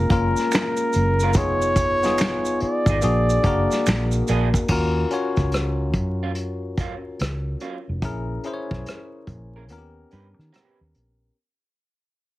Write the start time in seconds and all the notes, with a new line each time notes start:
Already playing: G#3 A#3 C#4 F4 G#4 A#4
0.09 F#1 A#3 C#4 F4 A#4, kick, closed hi-hat
0.37 snare, maracas
0.52 finger snap, snare, closed hi-hat, maracas
0.55 finger snap
0.77 maracas
0.93 F#1, closed hi-hat, maracas
1.20 F4 A#4, maracas
1.24 C#4
1.33 F1 B3 D#4 F4 C#5, kick, closed hi-hat, maracas
1.38 G#4
1.62 maracas
1.76 kick, closed hi-hat, maracas
2.03 B3 D#4 F4 G#4, snare, closed hi-hat, maracas
2.18 finger snap, snare, closed hi-hat, maracas
2.21 finger snap
2.45 maracas
2.60 D5, muted fingered electric bass stroke, closed hi-hat
2.86 G#1 G#4, kick, closed hi-hat, maracas
2.91 B3 D#4
3.02 A#1 A#3 D4 F#4 G#4, closed hi-hat, maracas
3.30 maracas
3.44 F#1 A#3 D4 F#4 A#4, kick, closed hi-hat
3.70 snare, closed hi-hat, maracas
3.86 A#1, finger snap, muted clean electric guitar stroke, snare, closed hi-hat, maracas
3.89 finger snap
4.12 maracas
4.28 A#1 A#3 D4 G#4, closed hi-hat, maracas
4.54 kick, closed hi-hat, maracas
4.68 D#2 C#4 F4 F#4 A#4, kick, crash
5.10 C#4 F4 F#4 C#5, closed hi-hat
5.36 C#2, kick, cross-stick, closed hi-hat
5.52 cross-stick, closed hi-hat
5.94 F#2, kick, closed hi-hat
6.23 F#3 C#4 F4
6.35 closed hi-hat
6.77 D#2 F#3 C#4 F4, kick, closed hi-hat
7.19 C#2, cross-stick, closed hi-hat
7.60 F#3 C#4 F4, closed hi-hat
7.89 F1
8.02 A#1 C#4 E4 G#4 A#4, kick, closed hi-hat
8.43 C#4 E4 G#4 C5, closed hi-hat
8.53 C#5
8.71 B1, kick, cross-stick
8.86 cross-stick, closed hi-hat
9.27 A#1, kick, closed hi-hat
9.56 C#4 G#4 A#4
9.68 D#2 B3 C#4 F4 A#4, closed hi-hat
9.78 G4
10.11 G2 C#4 G4 B4, closed hi-hat
10.39 D#3, cross-stick
10.53 C4 F#4 B4, cross-stick, closed hi-hat
10.64 C#4 G4
10.81 D#2
10.95 A#1, closed hi-hat